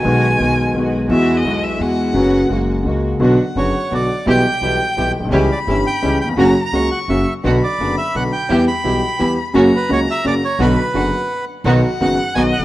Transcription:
X:1
M:3/4
L:1/16
Q:1/4=171
K:F#mix
V:1 name="Violin"
g8- g2 z2 | e3 d3 e2 f4- | f8 z4 | [K:Bm] f12 |
g12 | b12 | ^a4 c'6 z2 | b12 |
g8 b4 | ^a12 | b4 f6 z2 | [K:B] f8 d4 |]
V:2 name="Bandoneon"
z12 | z12 | z12 | [K:Bm] z4 c4 d4 |
g8- g2 z2 | z2 d2 e2 g4 g2 | ^a3 a3 f2 e3 z | z2 d4 e2 f2 g2- |
g2 b8 z2 | z2 B2 c2 e2 d2 c2 | B8- B2 z2 | [K:B] z4 f4 g2 f2 |]
V:3 name="String section"
[G,B,F]4 [G,B,F]4 [G,B,F]4 | [G,EF]4 [G,EF]4 [G,EF]4 | [B,CF]4 [G,A,F]4 [G,A,F]4 | [K:Bm] [B,DF]2 z2 [B,DF]2 z2 [B,DF]2 z2 |
[B,EG]2 z2 [B,EG]2 z2 [B,EG]2 z2 | [CEG]2 z2 [CEG]2 z2 [CEG]2 z2 | [^A,CF]2 z2 [A,CF]2 z2 [A,CF]2 z2 | [B,DF]2 z2 [B,DF]2 z2 [B,DF]2 z2 |
[B,EG]2 z2 [B,EG]2 z2 [B,EG]2 z2 | [^A,CF]2 z2 [A,CF]2 z2 [A,CF]2 z2 | [B,DF]2 z2 [B,DF]2 z6 | [K:B] [B,DF]2 z2 [B,DF]2 z2 [B,DF]2 z2 |]
V:4 name="Grand piano" clef=bass
[B,,,B,,D,G,B,F]4 [B,,,B,,D,G,B,F]4 [B,,,B,,D,G,B,F]4 | [E,,E,G,B,F]4 [B,,,B,,E,G,B,F]4 [E,,E,G,B,F]4 | [F,,C,F,B,F]4 [F,,C,F,G,A,F]4 [C,,C,G,A,F]4 | [K:Bm] [B,,,B,,D,F,B,F]2 z2 [F,,,F,,D,F,B,F]2 z2 [B,,,B,,D,F,B,F]2 z2 |
[B,,,B,,E,G,B,G]2 z2 [B,,,B,,E,G,B,G]2 z2 [B,,,B,,E,G,B,G]2 z/2 ^A,,,/2 B,,,/2 =C,,/2 | [C,,C,E,G,CG]2 z2 [G,,,G,,E,G,CG]2 z2 [C,,C,E,G,CG]2 z/2 ^D,,/2 E,,/2 ^E,,/2 | [F,,C,F,^A,F]2 z2 [C,,C,F,A,F]2 z2 [F,,C,F,A,F]2 z2 | [B,,,B,,D,F,B,F]2 z2 [F,,,F,,D,F,B,F]2 z2 [B,,,B,,D,F,B,F]2 z2 |
[E,,E,G,B,G]2 z2 [B,,,B,,E,G,B,G]2 z2 [E,,E,G,B,G]2 z2 | [F,,C,F,^A,F]2 z2 [C,,C,F,A,F]2 z2 [F,,C,F,A,F]2 z2 | [B,,,B,,D,F,B,F]2 z2 [F,,,F,,D,F,B,F]2 z6 | [K:B] [B,,,B,,D,F,B,F]2 z2 [F,,,F,,D,F,B,F]2 z2 [B,,,B,,D,F,B,F]2 z/2 ^E,,,/2 z |]
V:5 name="Upright bass" clef=bass
B,,,4 B,,,4 B,,,4 | E,,4 B,,,4 E,,4 | F,,,4 F,,,4 C,,4 | [K:Bm] B,,,3/2 z2 z/2 F,,,3/2 z2 z/2 B,,,3/2 z2 z/2 |
B,,,3/2 z2 z/2 B,,,3/2 z2 z/2 B,,,3/2 z ^A,,,/2 B,,,/2 =C,,/2 | C,,3/2 z2 z/2 G,,,3/2 z2 z/2 C,,3/2 z2 z/2 | F,,,3/2 z2 z/2 C,,3/2 z2 z/2 F,,,3/2 z2 z/2 | B,,,3/2 z2 z/2 F,,,3/2 z2 z/2 B,,,3/2 z2 z/2 |
E,,3/2 z2 z/2 B,,,3/2 z2 z/2 E,,3/2 z2 z/2 | F,,,3/2 z2 z/2 C,,3/2 z2 z/2 F,,,3/2 z2 z/2 | B,,,3/2 z2 z/2 F,,,3/2 z6 z/2 | [K:B] B,,,3/2 z2 z/2 F,,,3/2 z2 z/2 B,,,3/2 z ^E,,,/2 z |]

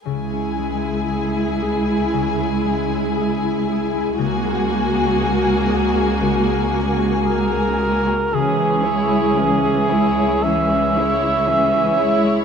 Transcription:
X:1
M:4/4
L:1/16
Q:1/4=58
K:C#dor
V:1 name="Cor anglais"
z16 | z12 A4 | G8 e8 |]
V:2 name="Violin section"
[Gg]16 | [Gg]16 | [CG]2 [Ec]2 [CG]2 [Ec]2 [CG]2 [Ec]2 [CG]2 [Ec]2 |]
V:3 name="Harp"
C, C G, E G E G E C, C G, E G E G E | C, G, A, F G A G F C, G, A, F G A G F | C, G, G E e G E G, C G, G E e G E G, |]
V:4 name="Viola section"
[G,E]16 | [A,F]16 | [E,C]2 [G,E]2 [E,C]2 [G,E]2 [E,C]2 [G,E]2 [E,C]2 [G,E]2 |]
V:5 name="Cello section" clef=bass
C,,16 | C,,16 | C,,16 |]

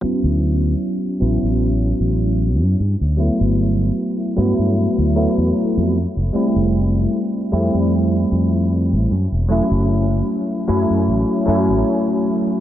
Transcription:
X:1
M:4/4
L:1/16
Q:"Swing 16ths" 1/4=76
K:D
V:1 name="Tine electric piano"
[F,B,CE]6 [F,B,CE]2 z8 | [F,A,B,E]6 [F,A,B,E]4 [F,A,B,E]4 z2 | [G,A,=CE]6 [G,A,CE]2 z8 | [F,A,CE]6 [F,A,CE]4 [F,A,CE]6 |]
V:2 name="Fretless electric bass" clef=bass
z D,,3 z2 A,,, A,,,3 A,,,3 F,, G,, D,, | z G,,,3 z2 G,, G,, z D,, z E,, z =F,, z =F,,, | z =F,,,3 z2 =F,, F,,3 F,,3 A,,, ^F,, E,,, | z F,,,3 z2 F,, F,, A,,, z F,, A,,, z4 |]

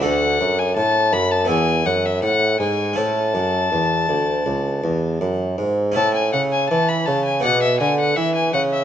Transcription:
X:1
M:4/4
L:1/16
Q:1/4=81
K:A
V:1 name="Violin"
f3 g a2 b a g2 f e f2 g2 | a12 z4 | a g f g a b a g f e g f e g f e |]
V:2 name="Harpsichord"
[DFA]8 [B,Ee]8 | [CEe]16 | [CEe]8 [B,Gd]8 |]
V:3 name="Harpsichord" clef=bass
D,,2 F,,2 A,,2 F,,2 E,,2 F,,2 A,,2 G,,2 | A,,2 F,,2 E,,2 D,,2 C,,2 E,,2 F,,2 G,,2 | A,,2 C,2 E,2 C,2 B,,2 D,2 E,2 C,2 |]
V:4 name="Bassoon" clef=bass
D,,2 F,,2 A,,2 F,,2 E,,2 F,,2 A,,2 G,,2 | A,,2 F,,2 E,,2 D,,2 C,,2 E,,2 F,,2 G,,2 | A,,2 C,2 E,2 C,2 B,,2 D,2 E,2 C,2 |]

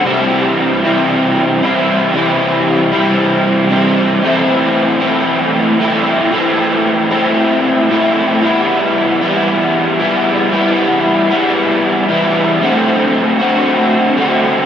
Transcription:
X:1
M:4/4
L:1/8
Q:1/4=115
K:Clyd
V:1 name="Overdriven electric guitar"
[C,E,G,CE]3 [C,E,G,CE]3 [C,E,G,CE]2 | [C,E,G,CE]3 [C,E,G,CE]3 [C,E,G,CE]2 | [A,,E,A,CE]3 [A,,E,A,CE]3 [A,,E,A,CE]2 | [A,,E,A,CE]3 [A,,E,A,CE]3 [A,,E,A,CE]2 |
[E,G,B,E]3 [E,G,B,E]3 [E,G,B,E]2 | [E,G,B,E]3 [E,G,B,E]3 [E,G,B,E]2 | [D,A,CF]3 [D,A,CF]3 [D,A,CF]2 |]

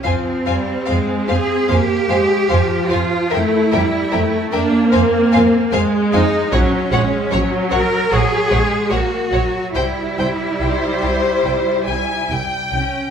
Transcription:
X:1
M:4/4
L:1/8
Q:1/4=74
K:Fm
V:1 name="Violin section"
a a a a a a a a | g g g g a a a a | _g g g g g g g g | g g g g g g g g |]
V:2 name="Violin section"
[cf] [cf] [cf] [cf] [cf] [cf] [cf] [cf] | [B=e] [Be] [Be] [Be] [cf] [cf] [cf] [cf] | d d d d d d d d | [cg] [cg] c3 a g2 |]
V:3 name="Cello section"
C3 A G3 F | =E3 =D C2 z _E | D3 B A2 _G2 | =E6 z D |]
V:4 name="Viola section" clef=bass
F, G, A, C B, A, F,2 | =A, G, A, B,3 _A,2 | _G, A, G,2 G, A, B, G, | G,6- G, z |]
V:5 name="Double bass section" clef=bass
F,, F,, F,, F,, F,, F,, F,, F,, | F,, F,, F,, F,, F,, F,, F,, F,, | B,,, B,,, B,,, B,,, B,,, B,,, B,,, B,,, | C,, C,, C,, C,, C,, C,, C,, C,, |]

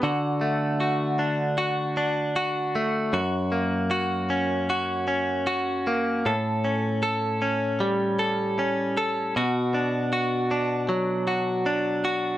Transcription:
X:1
M:4/4
L:1/8
Q:1/4=78
K:Amix
V:1 name="Clean electric guitar"
[D,F] A, F D F D F A, | [F,,F] ^A, F C F C F A, | [A,,A] C A C G, A C A | [B,,F] D F D F, F D F |]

